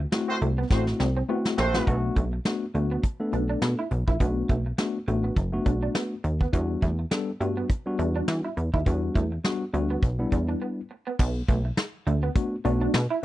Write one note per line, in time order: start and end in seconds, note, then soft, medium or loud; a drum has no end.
0.12 0.48 A3 medium
0.12 0.48 C4 medium
0.12 0.48 E4 medium
0.12 0.48 F#4 medium
0.12 muted clean electric guitar stroke soft
0.12 snare loud
0.12 closed hi-hat loud
0.28 0.37 A3 medium
0.28 0.37 C4 loud
0.28 0.37 F#4 medium
0.28 0.37 C5 loud
0.41 0.65 C2 medium
0.41 0.52 A3 medium
0.41 closed hi-hat medium
0.58 0.66 B3 medium
0.70 0.94 A1 loud
0.70 1.06 A3 medium
0.70 0.85 A3 medium
0.70 0.85 C4 medium
0.70 1.06 C4 medium
0.70 1.06 E4 medium
0.70 0.84 F#4 medium
0.70 1.07 F#4 medium
0.70 0.85 C5 medium
0.70 muted clean electric guitar stroke soft
0.70 kick loud
0.70 snare medium
0.87 snare medium
1.00 1.23 C2 loud
1.00 1.10 C4 medium
1.00 snare medium
1.17 1.24 C4 medium
1.29 1.55 A3 medium
1.29 1.39 B3 medium
1.29 1.56 C4 medium
1.29 1.56 E4 medium
1.29 1.56 F#4 medium
1.45 snare medium
1.58 1.81 A#1 loud
1.58 1.97 A3 loud
1.58 1.97 C4 loud
1.58 1.97 F#4 medium
1.58 1.97 C5 loud
1.58 muted clean electric guitar stroke soft
1.58 snare loud
1.74 1.86 A3 medium
1.74 1.82 B3 medium
1.74 1.87 C4 medium
1.74 1.88 E4 medium
1.74 1.87 F#4 medium
1.74 snare loud
1.87 2.10 B1 loud
1.87 2.23 A3 medium
1.87 2.23 B3 medium
1.87 1.97 B3 medium
1.87 2.23 D4 medium
1.87 2.23 F#4 loud
1.87 kick medium
1.87 closed hi-hat medium
2.16 2.39 B1 loud
2.16 2.27 A3 medium
2.16 kick medium
2.16 closed hi-hat medium
2.33 muted clean electric guitar stroke soft
2.45 2.64 A3 medium
2.45 2.64 B3 medium
2.45 2.65 D4 medium
2.45 2.65 F#4 medium
2.45 muted clean electric guitar stroke soft
2.45 snare loud
2.45 closed hi-hat medium
2.74 2.98 D2 medium
2.74 3.01 A3 medium
2.74 2.85 A3 medium
2.74 3.01 B3 medium
2.74 3.01 D4 medium
2.74 3.01 F#4 medium
2.74 closed hi-hat medium
2.91 2.99 B3 medium
3.04 muted clean electric guitar stroke soft
3.04 kick loud
3.04 closed hi-hat medium
3.20 3.81 A3 medium
3.20 3.81 B3 medium
3.20 3.81 D4 medium
3.20 3.81 A4 medium
3.33 3.56 B1 medium
3.33 3.43 D4 medium
3.33 closed hi-hat medium
3.49 3.57 D4 medium
3.62 3.75 B2 medium
3.62 snare loud
3.62 closed hi-hat medium
3.79 3.87 E4 medium
3.91 4.04 B1 medium
3.91 muted clean electric guitar stroke soft
3.91 closed hi-hat medium
4.07 4.18 A#1 medium
4.07 4.16 E4 medium
4.07 kick medium
4.20 4.43 B1 loud
4.20 4.56 A3 medium
4.20 4.56 B3 medium
4.20 4.31 B3 medium
4.20 4.56 D4 medium
4.20 4.56 F#4 medium
4.20 kick medium
4.20 closed hi-hat medium
4.49 4.72 B1 medium
4.49 4.60 A3 medium
4.49 kick medium
4.49 closed hi-hat medium
4.66 muted clean electric guitar stroke soft
4.78 4.97 A3 medium
4.78 4.97 B3 medium
4.78 4.98 D4 medium
4.78 4.98 F#4 medium
4.78 muted clean electric guitar stroke soft
4.78 snare loud
4.78 closed hi-hat medium
5.07 5.31 A1 loud
5.07 5.34 A3 medium
5.07 5.18 A3 medium
5.07 5.34 B3 medium
5.07 5.34 D4 medium
5.07 5.34 F#4 medium
5.07 closed hi-hat medium
5.24 5.32 B3 medium
5.36 5.60 F#1 medium
5.36 muted clean electric guitar stroke soft
5.36 kick loud
5.36 closed hi-hat medium
5.53 6.14 A3 medium
5.53 6.14 B3 medium
5.53 6.14 D4 medium
5.53 6.14 F#4 medium
5.66 5.89 B1 medium
5.66 5.76 D4 medium
5.66 kick loud
5.66 closed hi-hat medium
5.83 5.90 D4 medium
5.95 6.05 B3 medium
5.95 snare medium
5.95 closed hi-hat medium
6.24 6.47 D#2 medium
6.24 muted clean electric guitar stroke soft
6.24 closed hi-hat medium
6.41 6.49 B3 medium
6.41 kick medium
6.53 6.76 E2 loud
6.53 6.89 G3 medium
6.53 6.89 B3 medium
6.53 6.63 B3 medium
6.53 6.89 D4 medium
6.53 6.89 F#4 medium
6.53 kick loud
6.53 closed hi-hat medium
6.82 7.05 E2 loud
6.82 6.93 A3 medium
6.82 kick medium
6.82 closed hi-hat medium
6.99 muted clean electric guitar stroke soft
7.11 7.30 G3 medium
7.11 7.30 B3 medium
7.11 7.30 D4 medium
7.11 7.31 A4 medium
7.11 muted clean electric guitar stroke soft
7.11 snare loud
7.11 closed hi-hat medium
7.40 7.64 G2 medium
7.40 7.67 G3 medium
7.40 7.51 A3 medium
7.40 7.67 B3 medium
7.40 7.67 D4 medium
7.40 7.67 F#4 medium
7.40 closed hi-hat medium
7.57 7.65 B3 medium
7.70 muted clean electric guitar stroke soft
7.70 kick loud
7.70 closed hi-hat medium
7.86 8.47 G3 medium
7.86 8.47 B3 medium
7.86 8.47 D4 medium
7.86 8.47 F#4 medium
7.99 8.22 E2 medium
7.99 8.09 D4 medium
7.99 closed hi-hat medium
8.16 8.23 D4 medium
8.28 8.41 E3 loud
8.28 snare loud
8.28 closed hi-hat loud
8.45 8.52 E4 medium
8.57 8.70 E2 medium
8.57 muted clean electric guitar stroke soft
8.57 closed hi-hat medium
8.74 8.84 D#2 medium
8.74 8.81 E4 medium
8.74 kick medium
8.86 9.09 E2 loud
8.86 9.22 G3 medium
8.86 9.22 B3 medium
8.86 8.97 B3 medium
8.86 9.22 D4 medium
8.86 9.22 F#4 medium
8.86 kick loud
8.86 closed hi-hat medium
9.15 9.39 E2 medium
9.15 9.26 A3 medium
9.15 kick medium
9.15 closed hi-hat medium
9.32 muted clean electric guitar stroke soft
9.44 9.63 G3 medium
9.44 9.63 B3 medium
9.44 9.64 D4 medium
9.44 9.64 F#4 medium
9.44 muted clean electric guitar stroke soft
9.44 snare loud
9.44 closed hi-hat medium
9.73 9.97 D2 medium
9.73 10.00 G3 medium
9.73 9.84 A3 medium
9.73 10.00 B3 medium
9.73 10.00 D4 medium
9.73 10.00 F#4 medium
9.73 closed hi-hat medium
9.90 9.98 B3 medium
10.02 10.26 B1 medium
10.02 muted clean electric guitar stroke soft
10.02 kick loud
10.02 closed hi-hat medium
10.19 10.80 G3 medium
10.19 10.80 B3 medium
10.19 10.80 D4 medium
10.19 10.80 E4 medium
10.32 10.55 E2 loud
10.32 10.42 D4 medium
10.32 kick medium
10.32 closed hi-hat medium
10.49 10.56 D4 medium
10.62 10.71 B3 medium
10.91 muted clean electric guitar stroke soft
11.07 11.15 B3 medium
11.19 11.42 B1 loud
11.19 11.29 B3 medium
11.19 kick loud
11.19 crash loud
11.48 11.72 B1 loud
11.48 11.59 A3 medium
11.48 kick loud
11.48 closed hi-hat medium
11.65 muted clean electric guitar stroke soft
11.77 muted clean electric guitar stroke soft
11.77 snare loud
11.77 closed hi-hat loud
12.07 12.30 D2 medium
12.07 12.17 A3 medium
12.07 closed hi-hat medium
12.23 12.31 B3 medium
12.35 12.54 A3 medium
12.35 12.55 B3 medium
12.35 12.55 D4 medium
12.35 12.55 F#4 medium
12.35 muted clean electric guitar stroke soft
12.35 kick loud
12.35 closed hi-hat medium
12.64 12.88 B1 medium
12.64 13.00 A3 medium
12.64 13.00 B3 medium
12.64 13.01 D4 medium
12.64 12.75 D4 medium
12.64 13.01 F#4 loud
12.64 closed hi-hat medium
12.81 12.89 D4 medium
12.94 13.07 B2 loud
12.94 snare loud
12.94 closed hi-hat loud
13.10 13.18 E4 medium